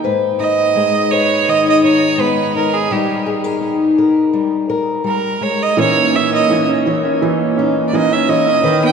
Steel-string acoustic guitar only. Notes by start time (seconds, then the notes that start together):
0.04 G#2 B4
0.40 D#4
0.76 G#3
1.12 B4
1.48 D#3
1.84 D#4
2.18 G#3 B3
2.55 D#4
2.91 G3 D#4
3.26 G#4
3.44 A#4
3.61 D#4
3.98 A#4
4.33 G3
4.70 A#4
5.04 G3
5.41 G#3
5.77 A#2 A#3 C#4 D#4
6.14 D#4
6.50 A#3
6.87 C#5
7.22 E3
7.59 D#4
7.93 A#3 C#4
8.29 C#5
8.63 D#3 B4